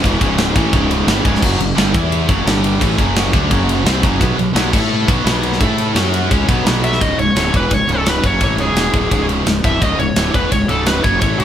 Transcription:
Already playing: E4
0.03 E1 E2 B2 C#3 E3 G#3 D#4, kick, ride
0.21 C#1 C#2 G#2 C#3, kick, ride
0.38 snare, ride
0.56 A1 A2 E3 A3, kick, ride
0.73 C#1 C#2 G#2 C#3, kick, ride
0.91 ride
1.07 G1 G2 D3 G3, snare, ride
1.24 C#1 C#2 G#2 C#3, kick, ride
1.35 snare
1.42 F#1 F#2 C#3 F#3 C#4 G#4 F#5, kick, crash
1.59 F#1 F#2 C#3, ride
1.76 G1 G2 D3 G3, snare, ride
1.93 E2 E3 B3 E4 F#4 E5, kick, ride
2.12 ride
2.28 F#1 F#2 C#3 F#3 C#4 G#4 F#5, kick, ride
2.44 G1 G2 D3 G3 D4 A4 G5, snare, ride
2.64 ride
2.79 A1 A2 E3 F#3 A3 C#4 G#4 F#5, kick, ride
2.97 F#1 F#2 C#3 F#3, kick, ride
3.16 snare, ride
3.32 D2 D3 A3 D4, kick, ride
3.49 F#1 F#2 C#3 F#3, kick, ride
3.69 ride
3.84 C2 C3 G3 C4, snare, ride
4.02 F#1 F#2 C#3 F#3, kick, ride
4.18 B1 B2 F#3 B3 F#4 C#5 B5, kick, ride
4.37 B1 B2 F#3, ride
4.54 B1 B2 F#3 B3, snare, ride
4.70 A2 A3 E4 A4 B4 A5, kick, crash
5.06 B1 B2 F#3 B3 F#4 C#5 B5, kick, ride
5.24 B1 B2 F#3 B3, snare, ride
5.43 ride
5.53 snare
5.58 A2 A3 E4 A4 B4 A5, kick, ride
5.78 ride
5.94 F#2 F#3 C#4 F#4 G#4 F#5, snare, ride
6.14 ride
6.30 C#2 C#3 G#3 B3 C#4 F#4 C#5 B5, kick, ride
6.48 B1 B2 F#3 B3, kick, ride
6.65 B1 B2 F#3 B3, snare, ride
6.84 E5, ride
6.93 snare
7.01 C#1 C#2 G#2 C#3 D#5, kick, ride
7.18 C#1 C#2 G#2 C#5, ride
7.35 D1 D2 A2 D3, snare, ride
7.54 E1 E2 B2 E3 B4, kick, ride
7.71 C#1 C#2 G#2 C#5, kick, ride
7.88 C#1 C#2 G#2, ride
7.92 C#3 A4
8.06 B4, snare, ride
8.24 F#1 F#2 C#3 F#3 C#5, kick, ride
8.41 A1 A2 E3 A3 C#5, kick, ride
8.58 C#1 C#2 G#2 C#3 G#4, ride
8.74 E1 E2 B2 E3, snare, ride
8.93 D1 D2 A2 D3, kick, ride
9.11 C#1 C#2 G#2 C#3, kick, ride
9.29 ride
9.46 C#1 C#2 G#2, snare, ride
9.64 D1 D2 A2 D3 E5, kick, ride
9.82 C#1 C#2 G#2 C#3 D#5, kick, ride
9.99 C#1 C#2 G#2 C#5, ride
10.15 D1 D2 A2 D3, snare, ride
10.34 E1 E2 B2 E3 B4, kick, ride
10.52 C#1 C#2 G#2 C#5, kick, ride
10.68 C#1 C#2 G#2 C#3 A4, ride
10.86 B4, snare, ride
11.03 F#1 F#2 C#3 F#3 C#5, kick, ride
11.20 A1 A2 E3 A3 C#5, kick, ride
11.38 C#1 C#2 G#2 C#3 G#4, ride

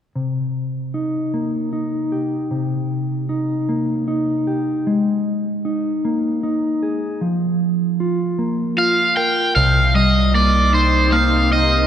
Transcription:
0.15 C3
0.94 D#4
1.34 A#3
1.73 D#4
2.12 G4
2.51 C3
3.29 D#4
3.69 A#3
4.08 D#4
4.47 G4
4.87 G#3
5.65 D#4
6.05 A#3
6.43 D#4
6.83 G#4
7.21 F3
8.00 F4
8.39 A#3
8.78 F4 F5
9.17 A#4 G5
9.56 C2 C3 C4 D#4 G4 A#4 F5
9.95 G3 D#5
10.34 A#3 D5
10.74 D#4 C5
11.12 A#3 F5
11.52 D#4 D#5

